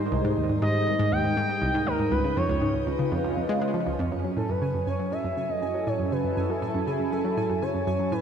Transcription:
Already playing: G3 G#3 D#4 A#4 C5
0.12 C2
0.25 G#2
0.37 D#2
0.50 G#2
0.62 G#2 D#5
0.74 G#2
0.87 C2
0.99 G#2
1.12 D#2 G5
1.24 G#2
1.37 G#2
1.49 G#2
1.62 C2
1.74 G#2
1.87 D#2 A#4
1.99 G#2
2.12 C#2 C#3 B4
2.24 C#3
2.33 F2 C#4 C#5
2.49 C#2 B4
2.60 G#2 F4
2.74 C#2
2.87 C#2
2.99 C#3 D#5
3.12 F2
3.24 C#2
3.37 F2
3.49 G#3
3.62 G#3
3.74 F3
3.87 C#2
3.99 F2
4.12 F#2 F#3 G#5
4.24 F#3
4.37 A2 A4
4.49 F#2 B4
4.62 C#3
4.74 F#2
4.87 F#2 C#5
4.94 G#5
4.99 F#3
5.12 A2 A4 E5
5.24 F#2
5.33 C#3 E4
5.49 F#2 D#5
5.62 F#2
5.74 F#3
5.87 A2 C#5
5.99 F#2
6.12 C#3 B4
6.24 F#2
6.37 F#2
6.49 F#3 A4
6.62 A2
6.75 F#2
6.87 C#3 G#4
7.00 F#2
7.12 F#2 A4
7.25 F#3
7.37 A2
7.50 F#2
7.62 C#3 C#5
7.75 F#2
7.87 F#2
7.99 F#3
8.12 A2 B4

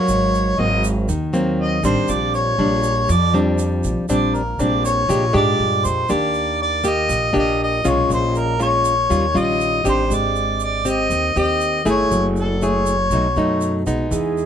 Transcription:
Already playing: F#3 A#3 C#5
0.08 G#1 G#2, shaker
0.34 shaker
0.59 G#1 F#3 A#3 C4 D#5
0.84 shaker
1.09 D#2 D#3, shaker
1.33 F#3 A#3 C4, shaker
1.60 D#5
1.83 A1 G3 C4 D4 C5, shaker
2.08 A#1 A#2 D5, shaker
2.34 C#5, shaker
2.58 A#1 G3 D4
2.84 shaker
3.09 F2 F3 D5, shaker
3.34 G3 C4 D4, shaker
3.59 shaker
3.84 A#1, shaker
4.09 A#1 A#2 G3 C4 D4 D5, shaker
4.35 A#4, shaker
4.59 A#1 G3 C4 D4 D5, shaker
4.85 C#5, shaker
5.09 A#1 A#2 G#3 D4 G4, shaker
5.33 G#2 G#3 D4 G4 D5, shaker
5.59 G2
5.85 F2 C5, shaker
6.09 D#2 D#3 A#3 D4 G4 D5, shaker
6.34 shaker
6.62 D5
6.84 A#3 G4 D#5, shaker
7.09 A#1 A#2, shaker
7.33 A#1 A#3 D4 G4, shaker
7.38 D#5
7.63 D#5
7.85 B1 G#3 C#4 F4, shaker
7.89 C#5
8.09 A#1 A#2, shaker
8.13 C5
8.35 A#4, shaker
8.59 G#3 C#4 F4 C#5, shaker
8.85 shaker
9.10 D#2 D#3 G3 C#4 F4, shaker
9.34 A#1 G3 C#4 F4 D#5, shaker
9.60 shaker
9.84 A1 C4 D4 G4, shaker
9.89 C5
10.10 G#1 G#3 D5, shaker
10.36 shaker
10.60 D5, shaker
10.85 C4 G4 D#5, shaker
11.10 D#2 D#3, shaker
11.36 D#2 C4 G4 D#5, shaker
11.61 shaker
11.85 G1 A3 E4 G#4, shaker
11.90 C#5
12.10 F#1 F#3, shaker
12.36 A4, shaker
12.62 A3 E4 G#4 C#5, shaker
12.86 shaker
13.10 B1 B2 F#3 A3 D#4, shaker
13.36 F#2 F#3 A3 D#4, shaker
13.61 shaker
13.86 B1 G#3 B3 D#4, shaker
14.11 E2 E3 G#4, shaker
14.37 shaker

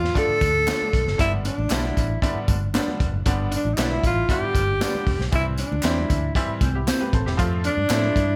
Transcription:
Already playing: F4
0.04 snare
0.14 D3 F3 A3 D4 F4, kick, closed hi-hat, tambourine
0.19 A4
0.29 muted fingered electric bass stroke, muted conga
0.41 D2 D4, kick, closed hi-hat, tambourine, high conga
0.67 D3 F3 A3 D4 F4 A4 D5, snare, clap, closed hi-hat, tambourine, muted conga
0.82 muted conga, high conga
0.93 B1, kick, closed hi-hat, low conga
1.06 F#1, snare
1.18 G1 D3 G3 B3 D4 E4, kick, closed hi-hat, tambourine, muted conga, low conga
1.33 high conga
1.45 D4, closed hi-hat, tambourine
1.58 A1, high conga
1.70 B1 D3 G3 B3 D4 E4 G4 B4 D5, snare, clap, closed hi-hat, tambourine, muted conga
1.85 high conga
1.97 A1, kick, closed hi-hat, tambourine, low conga
2.22 D3 G3 B3 D4 E4, kick, closed hi-hat, tambourine
2.36 muted fingered electric bass stroke
2.48 G1 D4, kick, closed hi-hat, tambourine, high conga
2.74 D3 G3 B3 D4 G4 B4 D5, snare, clap, closed hi-hat, tambourine, muted conga
2.88 muted conga, high conga
3.00 E1, kick, closed hi-hat, low conga
3.13 F#1
3.26 G1 D3 G3 B3 D4, kick, closed hi-hat, tambourine, muted conga
3.40 muted conga
3.51 D4, closed hi-hat, tambourine
3.56 D4
3.65 A1, high conga
3.74 D3 D4 D#4
3.78 B1 G3 B3 D4 E4 G4 B4 D5, snare, clap, closed hi-hat, tambourine
3.92 muted conga, high conga
4.03 A1 F4, kick, closed hi-hat, tambourine, low conga
4.29 D3 G3 B3 E4 F4 G4, kick, closed hi-hat, tambourine
4.42 muted fingered electric bass stroke
4.55 G1 D4, kick, closed hi-hat, tambourine, high conga
4.81 D3 G3 B3 D4 G4 B4 D5, snare, clap, closed hi-hat, tambourine, muted conga
4.95 muted conga, high conga
5.07 E1, kick, open hi-hat, low conga
5.19 B1, snare
5.32 C2 E3 G3 C4 E4, kick, closed hi-hat, tambourine, muted conga
5.58 D4, closed hi-hat, tambourine
5.72 D2, high conga
5.83 E2 E3 G3 C4 E4 G4 C5, snare, clap, closed hi-hat, tambourine
5.98 muted conga, high conga
6.10 D2, kick, closed hi-hat, tambourine, low conga
6.35 E3 G3 C4 E4, kick, closed hi-hat, muted conga
6.49 muted fingered electric bass stroke, muted conga
6.61 C2 C4, kick, closed hi-hat, tambourine, high conga
6.75 E4 G4
6.87 C4 E4 G4 C5, snare, clap, closed hi-hat, tambourine
7.01 G4 B4, muted conga, high conga
7.13 A1 A4 C5, kick, closed hi-hat, low conga
7.26 E1 E4 G4, snare
7.37 F2 F3 A3 C4 F4, kick, closed hi-hat, tambourine, muted conga
7.53 muted conga
7.64 D4, closed hi-hat, tambourine
7.77 G2, high conga
7.89 A2 F3 A3 C4 E4 F4 A4 C5, snare, clap, closed hi-hat, tambourine
8.05 high conga
8.16 G2, kick, closed hi-hat, tambourine, low conga

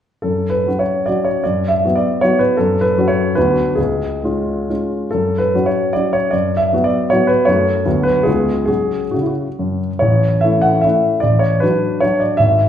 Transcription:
0.22 F#2 A4
0.50 B4
0.67 F#3 C#4 F#4
0.79 C#5
1.06 F#3 C#4 F#4 D5
1.24 C#5
1.44 F#2 D5
1.68 E5
1.84 F#3 B3 F#4
1.96 D5
2.21 F#3 B3 F#4 C#5
2.39 B4
2.57 F#2 A4
2.81 B4
2.98 F#3 C#4 F#4
3.08 C#5
3.35 D2 F#3 B3 F#4 B4
3.75 C#2 G#4
4.23 G#3 C#4 F4
4.69 G#3 C#4 F4
5.11 F#2 A4
5.38 B4
5.55 F#3 C#4 F#4
5.66 C#5
5.93 F#3 C#4 F#4 D5
6.13 C#5
6.31 F#2 D5
6.57 E5
6.73 F#3 B3 F#4
6.84 D5
7.10 F#3 B3 F#4 C#5
7.27 B4
7.45 F#2 F#3 A3 F#4 C#5
7.86 D2 F#3 B3 F#4
8.03 B4
8.23 C#2 G#3 B3 F4 G#4
8.65 F#3 C#4 F#4 G#4
9.11 C#3 F#4
9.21 E4
9.27 F#4
9.59 F#2
9.99 A1 C#5
10.41 A3 C#4 E4 E5
10.61 F#5
10.81 A3 C#4 E4 E5
11.20 A1 D5
11.39 C#5
11.60 F#3 D4 F#4 B4
12.00 F#3 D4 F#4 C#5
12.20 D5
12.37 G#1 E5

